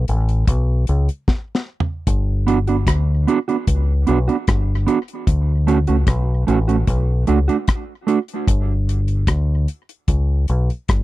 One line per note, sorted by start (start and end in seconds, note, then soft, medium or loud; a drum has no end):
0.08 0.46 A1 medium
0.08 closed hi-hat medium
0.29 closed hi-hat soft
0.47 0.85 B1 medium
0.47 kick loud
0.47 closed hi-hat medium
0.87 1.08 C#2 medium
0.87 closed hi-hat medium
1.09 closed hi-hat soft
1.28 kick loud
1.28 snare soft
1.55 snare medium
1.80 floor tom loud
2.07 2.83 G1 medium
2.07 kick loud
2.07 closed hi-hat loud
2.47 2.57 B3 medium
2.47 2.58 D4 medium
2.47 2.58 F#4 medium
2.47 closed hi-hat medium
2.67 2.76 B3 soft
2.67 2.76 D4 medium
2.67 2.75 F#4 medium
2.67 closed hi-hat soft
2.87 3.25 D2 medium
2.87 kick loud
2.87 cross-stick loud
2.87 closed hi-hat medium
3.27 3.37 B3 medium
3.27 3.38 D4 medium
3.27 3.38 F#4 medium
3.27 closed hi-hat medium
3.48 3.56 B3 medium
3.48 3.56 D4 medium
3.48 3.55 F#4 medium
3.48 closed hi-hat soft
3.67 4.05 C#2 medium
3.67 kick loud
3.67 closed hi-hat medium
4.07 4.28 B1 medium
4.07 4.17 B3 medium
4.07 4.18 D4 medium
4.07 4.18 F#4 medium
4.07 closed hi-hat medium
4.28 4.36 B3 medium
4.28 4.36 D4 medium
4.28 4.35 F#4 medium
4.28 closed hi-hat soft
4.47 4.86 G1 medium
4.47 kick loud
4.47 cross-stick loud
4.47 closed hi-hat medium
4.87 4.97 B3 medium
4.87 4.98 D4 medium
4.87 4.98 F#4 medium
4.87 closed hi-hat medium
5.08 closed hi-hat soft
5.27 5.85 D2 medium
5.27 kick loud
5.27 closed hi-hat loud
5.67 5.77 A3 medium
5.67 5.78 C#4 medium
5.67 5.78 F#4 medium
5.67 closed hi-hat medium
5.87 6.07 C#2 medium
5.87 5.96 A3 soft
5.87 5.96 C#4 medium
5.87 5.95 F#4 medium
5.87 closed hi-hat soft
6.07 6.45 B1 medium
6.07 kick loud
6.07 cross-stick loud
6.07 closed hi-hat loud
6.47 6.86 A1 medium
6.47 6.57 A3 medium
6.47 6.58 C#4 medium
6.47 6.58 F#4 medium
6.47 closed hi-hat medium
6.68 6.76 A3 soft
6.68 6.76 C#4 soft
6.68 6.75 F#4 medium
6.68 closed hi-hat soft
6.87 7.25 B1 medium
6.87 kick loud
6.87 closed hi-hat medium
7.27 7.48 C#2 medium
7.27 7.38 A3 medium
7.27 7.38 D4 medium
7.27 7.38 F#4 medium
7.27 closed hi-hat medium
7.48 7.56 A3 medium
7.48 7.56 D4 medium
7.48 7.55 F#4 medium
7.48 closed hi-hat soft
7.68 kick loud
7.68 cross-stick loud
7.68 closed hi-hat medium
8.07 8.17 A3 medium
8.07 8.18 D4 medium
8.07 8.18 F#4 medium
8.07 closed hi-hat medium
8.28 closed hi-hat medium
8.47 9.24 G1 medium
8.47 kick loud
8.47 closed hi-hat loud
8.89 closed hi-hat medium
9.08 closed hi-hat soft
9.27 9.66 D2 medium
9.27 kick loud
9.27 cross-stick loud
9.27 closed hi-hat medium
9.68 closed hi-hat medium
9.89 closed hi-hat soft
10.08 10.46 C#2 medium
10.08 kick loud
10.08 closed hi-hat medium
10.48 10.68 B1 loud
10.48 closed hi-hat medium
10.70 closed hi-hat soft
10.88 11.03 G1 medium
10.88 kick loud
10.88 cross-stick medium
10.88 closed hi-hat medium